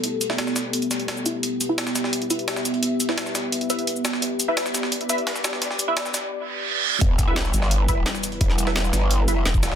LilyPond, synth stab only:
\new Staff \with { instrumentName = "Synth stab" } { \time 4/4 \key e \minor \tempo 4 = 172 r8. <e' b' e''>4.~ <e' b' e''>16 r4 <e' b' e''>16 r16 | r8. <e' b' e''>4.~ <e' b' e''>16 <e' b' e''>16 r4 r16 | r8. <e' b' e''>4.~ <e' b' e''>16 <e' b' e''>16 r4 r16 | r8. <e' b' e''>4.~ <e' b' e''>16 <e' b' e''>16 r4 r16 |
r8. <e' b' e''>4~ <e' b' e''>16 r2 | r8. <e' b' e''>4.~ <e' b' e''>16 <e' b' e''>16 r4 r16 | r8. <e' b' e''>4.~ <e' b' e''>16 <e' b' e''>16 r4 r16 | }